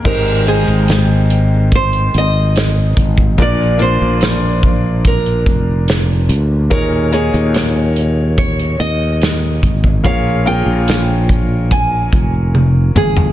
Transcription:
<<
  \new Staff \with { instrumentName = "Nylon-string guitar" } { \time 4/4 \key aes \major \tempo 4 = 72 bes'8 aes'4. c''8 ees''4. | d''8 c''4. bes'4. r8 | bes'8 aes'4. des''8 ees''4. | f''8 g''4. aes''4. aes'8 | }
  \new Staff \with { instrumentName = "Grand piano" } { \time 4/4 \key aes \major <aes ees' g' c''>8 <aes ees' c'' g''>2 r4. | <bes d' f' d''>8 <bes d' f' d''>2 r4. | <bes ees' aes' des''>8 <bes ees' aes' des''>2 r4. | <bes f' aes' des''>8 <bes f' aes' bes'>2 r4. | }
  \new Staff \with { instrumentName = "Grand piano" } { \clef bass \time 4/4 \key aes \major <aes, ees>4. r2 r8 | <bes, f>4. r2 r8 | bes,4. r2 r8 | r1 | }
  \new Staff \with { instrumentName = "Fretless electric bass" } { \clef bass \time 4/4 \key aes \major aes,,8. aes,,4.~ aes,,16 aes,,4 aes,,8 | bes,,8. bes,,4.~ bes,,16 f,,4 d,8 | ees,8. ees,4.~ ees,16 ees,4 aes,,8 | bes,,8. bes,,4.~ bes,,16 f,,4 g,,8 | }
  \new DrumStaff \with { instrumentName = "Drums" } \drummode { \time 4/4 <cymc bd>8 hh16 hh16 <hh sn>8 hh8 <hh bd>16 hh16 hh8 <hh sn>8 <hh bd>16 bd16 | <hh bd>8 hh8 <hh sn>8 <hh bd>8 <hh bd>16 hh16 <hh bd>8 <hh sn>8 hh8 | <hh bd>8 hh16 hh16 <hh sn>8 hh8 <hh bd>16 hh16 hh8 <hh sn>8 <hh bd>16 bd16 | <hh bd>8 hh8 <hh sn>8 <hh bd>8 <hh bd>8 <hh bd>8 tommh8 toml16 tomfh16 | }
>>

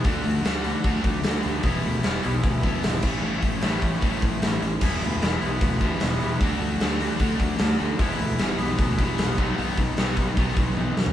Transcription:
<<
  \new Staff \with { instrumentName = "Distorted electric guitar" } { \time 4/4 \key e \mixolydian \tempo 4 = 151 <d a d' fis'>4. <d a d' fis'>2~ <d a d' fis'>8 | <e gis b e'>4. <e gis b e'>2 <a, e a cis' e'>8~ | <a, e a cis' e'>4 <a, e a cis' e'>2~ <a, e a cis' e'>8 r8 | <e gis b e'>4. <e gis b e'>2~ <e gis b e'>8 |
<d a d' fis'>4. <d a d' fis'>2~ <d a d' fis'>8 | <e gis b e'>4. <e gis b e'>2 <b, dis fis b dis'>8~ | <b, dis fis b dis'>4 <b, dis fis b dis'>2~ <b, dis fis b dis'>8 r8 | }
  \new Staff \with { instrumentName = "Distorted electric guitar" } { \clef bass \time 4/4 \key e \mixolydian <d a d'>8 <d a>8 <d a d'>8 <d a>8 <d a d'>8 <d a>8 <d a>8 <d a>8 | <e, b, e>8 <e, b,>8 <e, b, e>8 <e, b,>8 <e, b,>8 <e, b, e>8 <e, b,>8 <a, e a>8 | <a, e a>8 <a, e>8 <a, e a>8 <a, e>8 <a, e a>8 <a, e>8 <a, e>8 <a, e>8 | <e, b, e>8 <e, b,>8 <e, b, e>8 <e, b,>8 <e, b,>8 <e, b, e>8 <e, b,>8 <e, b,>8 |
<d a d'>8 <d a>8 <d a d'>8 <d a>8 <d a d'>8 <d a>8 <d a>8 <d a>8 | <e, b, e>8 <e, b,>8 <e, b, e>8 <e, b,>8 <e, b,>8 <e, b, e>8 <e, b,>8 <b, fis b>8 | <b, fis b>8 <b, fis>8 <b, fis b>8 <b, fis>8 <b, fis b>8 <b, fis>8 <b, fis>8 <b, fis>8 | }
  \new Staff \with { instrumentName = "Distorted electric guitar" } { \clef bass \time 4/4 \key e \mixolydian <d a d'>8 <d a>8 <d a d'>8 <d a>8 <d a d'>8 <d a>8 <d a>8 <d a>8 | <e, b, e>8 <e, b,>8 <e, b, e>8 <e, b,>8 <e, b,>8 <e, b, e>8 <e, b,>8 <a, e a>8 | <a, e a>8 <a, e>8 <a, e a>8 <a, e>8 <a, e a>8 <a, e>8 <a, e>8 <a, e>8 | <e, b, e>8 <e, b,>8 <e, b, e>8 <e, b,>8 <e, b,>8 <e, b, e>8 <e, b,>8 <e, b,>8 |
<d a d'>8 <d a>8 <d a d'>8 <d a>8 <d a d'>8 <d a>8 <d a>8 <d a>8 | <e, b, e>8 <e, b,>8 <e, b, e>8 <e, b,>8 <e, b,>8 <e, b, e>8 <e, b,>8 <b, fis b>8 | <b, fis b>8 <b, fis>8 <b, fis b>8 <b, fis>8 <b, fis b>8 <b, fis>8 <b, fis>8 <b, fis>8 | }
  \new Staff \with { instrumentName = "Fingered electric bass" } { \clef bass \time 4/4 \key e \mixolydian d,8 d,8 d,4 d,8 d,8 d,8 d,8 | e,,8 d,8 e,,8 b,,8 d,4 gis,,8 a,,8 | a,,8 a,,8 a,,4 a,,8 a,,8 a,,8 a,,8 | e,,8 d,8 e,,8 b,,8 d,4 e,,8 e,8 |
d,8 d,8 d,4 d,8 d,8 d,8 d,8 | e,,8 d,8 e,,8 b,,8 d,4 ais,,8 b,,8 | b,,8 b,,8 b,,4 b,,8 b,,8 b,,8 fis,8 | }
  \new DrumStaff \with { instrumentName = "Drums" } \drummode { \time 4/4 <hho bd>8 hho8 <hho sn>8 hho8 <hho bd>16 sn16 <hho bd>8 <hho sn>8 hho8 | <hho bd>8 hho8 <hho sn>8 hho8 <hho bd>8 <hho bd>8 <hho sn>8 <cymc bd>8 | r8 <hho bd>8 <hho sn>8 <hho bd>16 sn16 <hho bd>8 <hho bd>8 <hho sn>8 hho8 | <cymc bd>8 hho8 <hho sn>8 hho8 <hho bd>16 sn16 <hho bd>8 <hho sn>8 hho8 |
<hho bd>8 hho8 <hho sn>8 hho16 sn16 <hho bd>8 <hho bd>8 <hho sn>8 hho8 | <hho bd>8 hho8 <hho sn>8 hho16 sn16 <hho bd>16 sn16 <hho bd>8 <hho sn>8 <hho bd>8 | hho8 <hho bd>8 <hho sn>8 <hho bd>8 <hho bd>16 sn16 <hho bd>8 tommh8 sn16 tomfh16 | }
>>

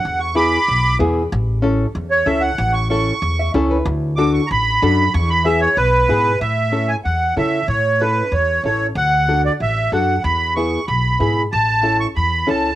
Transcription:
<<
  \new Staff \with { instrumentName = "Accordion" } { \time 4/4 \key a \major \tempo 4 = 188 fis''8 cis'''8 <b'' d'''>2 r4 | r2 r8 cis''8 e''8 fis''8~ | fis''8 cis'''8 cis'''2 r4 | r4 d'''8 cis'''8 <bes'' b''>2 |
cis'''8 b''8 e''8 cis''8 b'2 | e''4. gis''8 fis''4 e''4 | cis''4 b'4 cis''4 cis''8. r16 | fis''4. d''8 e''4 fis''4 |
b''4 cis'''4 b''4 b''8. r16 | a''4. cis'''8 b''4 a''4 | }
  \new Staff \with { instrumentName = "Nylon-string guitar" } { \time 4/4 \key a \major r4 <b e' gis'>8 r4. <b e' gis'>8 r8 | r4 <cis' e' a'>8 r4. <cis' e' a'>8 r8 | r4 <cis' e' a'>8 r4 e''8 <cis' e' a' cis''>8 b'8 | r4 <d' fis' a'>8 r4. <d' fis' a'>8 r8 |
r4 <b e' gis'>8 r4. <b e' gis'>8 r8 | r4 <cis' e' a'>8 r4. <cis' e' a'>8 r8 | r4 <cis' e' a'>8 r4. <cis' e' a'>8 r8 | r4 <d' fis' a'>8 r4. <d' fis' a'>8 r8 |
r4 <b e' gis'>8 r4. <b e' gis'>8 r8 | r4 <cis' e' a'>8 r4. <cis' e' a'>8 r8 | }
  \new Staff \with { instrumentName = "Upright bass" } { \clef bass \time 4/4 \key a \major e,2 b,,4 e,4 | a,,2 e,4 cis,4 | a,,2 e,4 cis,4 | d,2 a,,4 fis,4 |
e,2 b,,4 gis,4 | a,2 e,4 cis4 | a,2 e,4 a,,4 | d,2 a,,4 fis,4 |
e,2 b,,4 gis,4 | a,,2 e,4 cis,4 | }
>>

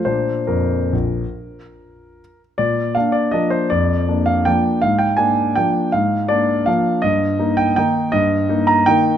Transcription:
<<
  \new Staff \with { instrumentName = "Grand piano" } { \time 3/4 \key bes \major \tempo 4 = 160 c''4 bes'2~ | bes'2~ bes'8 r8 | d''4 f''8 d''8 ees''8 c''8 | d''4. f''8 g''4 |
f''8 g''8 aes''4 g''4 | f''4 d''4 f''4 | ees''4. g''8 g''4 | ees''4. bes''8 g''4 | }
  \new Staff \with { instrumentName = "Grand piano" } { \time 3/4 \key bes \major <bes, bes d'>4 f,4 bes,,4 | r2. | bes,4 <bes d'>4 <f bes d'>4 | f,4 <bes d'>4 <f bes d'>4 |
aes,4 <bes d'>4 <f bes d'>4 | aes,4 <bes d'>4 <f bes d'>4 | g,4 <bes ees'>4 <ees bes ees'>4 | g,4 <bes ees'>4 <ees bes ees'>4 | }
>>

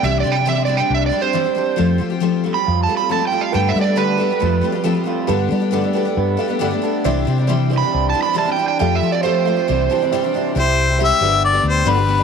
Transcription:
<<
  \new Staff \with { instrumentName = "Electric slide guitar" } { \time 4/4 \key c \major \tempo 4 = 137 \tuplet 3/2 { e''8 d''8 g''8 e''8 d''8 g''8 e''8 d''8 c''8~ } c''4~ | c''8 r8 \tuplet 3/2 { r4 b''8~ b''8 a''8 b''8 a''8 g''8 f''8 } | \tuplet 3/2 { g''8 e''8 d''8 } b'2. | r1 |
r4 \tuplet 3/2 { r4 b''8~ b''8 a''8 b''8 a''8 g''8 g''8 } | \tuplet 3/2 { g''8 e''8 d''8 } c''2. | \key c \lydian r1 | }
  \new Staff \with { instrumentName = "Harmonica" } { \time 4/4 \key c \major r1 | r1 | r1 | r1 |
r1 | r1 | \key c \lydian c''4 e''4 d''8 c''8 b'4 | }
  \new Staff \with { instrumentName = "Upright piano" } { \time 4/4 \key c \major << { r1 | r1 | r1 | r2 r8 f''8 g''8 a''8 |
r1 | r2 r8 a''8 g''8 e''8 | \key c \lydian r1 | } \\ { r1 | r1 | <g' a' b'>4 <g' a' b'>8 <g' a' d''>8 <f' g' a'>4 <f' g' a'>4 | <g' a' b'>4 <g' a' b'>8 <g' a' b'>8 <g' a' b'>4 <g' a' d''>4 |
<e' c'' d''>4 <e' c'' d''>8 <e' c'' d''>8 <e' c'' d''>4 <e' c'' d''>4 | <g' a' f''>4 <g' a' f''>8 <g' a' f''>8 <e' c'' d''>4 <e' c'' d''>4 | <e' g' c'' e''>4 <e' g' c'' e''>8 <d' g' b' d''>4. <d' g' b' d''>4 | } >> }
  \new Staff \with { instrumentName = "Twelve-string acoustic guitar" } { \time 4/4 \key c \major <c e g c' d' g'>8 <g c' d' g'>16 <g c' d' g'>16 <c e g c' d' g'>16 <g c' d' g'>16 <g c' d' g'>16 <g c' d' g'>8. <g c' d' g'>16 <g c' d' g'>16 <c e g c' d' g'>16 <g c' d' g'>16 <g c' d' g'>8 | <f a c' f' g'>8 <a c' f' g'>16 <c' f' g'>16 <f a c' f' g'>8 <a c' f' g'>16 <c' f' g'>8. <a c' f' g'>16 <c' f' g'>16 <f a c' f' g'>16 <c' f' g'>16 <a c' f' g'>8 | <g, d a b d' g'>8 <a b d' g'>16 <a b d' g'>16 <g, d a b d' g'>8 <a b d' g'>16 <a b d' g'>16 <f a c' f' g'>8 <a c' f' g'>16 <c' f' g'>16 <f a c' f' g'>16 <c' f' g'>16 <a c' f' g'>8 | <g, d a b d' g'>8 <a b d' g'>16 <a b d' g'>16 <g, d a b d' g'>16 <a b d' g'>16 <a b d' g'>16 <a b d' g'>8. <a b d' g'>16 <a b d' g'>16 <g, d a b d' g'>16 <a b d' g'>16 <a b d' g'>8 |
<c e g c' d' g'>8 <g c' d' g'>16 <g c' d' g'>16 <c e g c' d' g'>8 <g c' d' g'>16 <g c' d' g'>8. <g c' d' g'>16 <g c' d' g'>16 <c e g c' d' g'>16 <g c' d' g'>16 <g c' d' g'>8 | <f a c' f' g'>8 <a c' f' g'>16 <c' f' g'>16 <f a c' f' g'>8 <a c' f' g'>16 <c' f' g'>16 <c e g c' d' g'>8 <g c' d' g'>16 <g c' d' g'>16 <c e g c' d' g'>16 <g c' d' g'>16 <g c' d' g'>8 | \key c \lydian <c g c' e' g'>8. <c' e' g'>16 <c g c' e' g'>8 <g b d' g'>16 <g b d' g'>8 <g b d' g'>8. <g, d g b d' g'>16 <g b d' g'>16 <g b d' g'>16 <b d' g'>16 | }
  \new Staff \with { instrumentName = "Clean electric guitar" } { \clef bass \time 4/4 \key c \major c4 c'8 g8 d'8 g8 c'8 d'8 | f4 c'8 g8 f'8 g8 c'8 f'8 | g4 d'8 g8 f8 g8 c'8 f'8 | g4 d'8 g8 b8 g8 d'8 b8 |
c4 g8 e8 d'8 e8 g8 d'8 | f4 a8 f8 c8 e8 g8 d'8 | \key c \lydian r1 | }
  \new Staff \with { instrumentName = "Fingered electric bass" } { \clef bass \time 4/4 \key c \major c,8 c4. c,8 r4. | f,8 f4. f,8 r4. | g,8 g4. f,8 r4. | g,8 g4. g,8 r4. |
c,8 c4. c,8 r4. | f,8 f4. c,8 r4. | \key c \lydian c,4. g,,4 d,8 g,,4 | }
>>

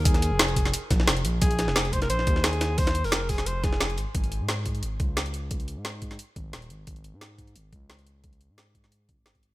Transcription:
<<
  \new Staff \with { instrumentName = "Alto saxophone" } { \time 4/4 \key aes \mixolydian \tempo 4 = 176 aes'2 r2 | aes'4. c''16 bes'16 c''4 aes'4 | c''8. bes'8. aes'8 c''8 aes'4 r8 | r1 |
r1 | r1 | r1 | }
  \new Staff \with { instrumentName = "Analog synth bass" } { \clef bass \time 4/4 \key aes \mixolydian ees,8. f,,4~ f,,16 r8 bes,,8 f,,8 bes,,8 | bes,,8. f,,4~ f,,16 bes,,8 ees,4.~ | ees,8. f,,4~ f,,16 f,,4 f,,8 aes,,16 r16 | aes,,8. aes,4~ aes,16 aes,,8 des,4.~ |
des,8. aes,4~ aes,16 r8 aes,,8 ees,,8 aes,,8 | aes,,8. aes,4~ aes,16 aes,,8 des,4.~ | des,8. aes,4.~ aes,16 des,16 aes,,4~ aes,,16 | }
  \new DrumStaff \with { instrumentName = "Drums" } \drummode { \time 4/4 <hh bd>16 <hh sn>16 hh8 <hh sn>16 hh16 <hh bd>16 <hh sn>16 hh8 <hh bd sn>16 sn16 <hh sn>16 hh16 hh8 | <hh bd>16 hh16 <hh sn>16 sn16 <hh sn>16 hh16 <hh bd>16 <hh sn>16 hh16 sn16 <hh bd>16 sn16 <hh sn>16 hh16 <hh sn>8 | <hh hho bd>16 <hh sn>16 hh16 hho16 <hh sn>8 <hh hho bd>16 <hh sn>16 hh8 <hh bd sn>16 sn16 <hh sn>16 hh16 hh8 | <hh bd>16 hh16 hh8 <hh sn>8 <hh bd>16 hh16 hh8 <hh bd>8 <hh sn>16 hh16 hh8 |
<hh bd>16 hh16 hh8 <hh sn>8 <hh bd>16 <hh sn>16 hh8 <hh bd>8 <hh sn>16 hh16 hh8 | <hh bd>16 hh16 hh8 <hh sn>8 <hh bd>16 hh16 hh8 <hh bd>8 <hh sn>16 hh16 hh8 | <hh bd>16 hh16 hh8 <hh sn>8 <hh bd>16 <hh sn>16 hh8 <hh bd>8 <hh sn>16 <hh bd>16 hh8 | }
>>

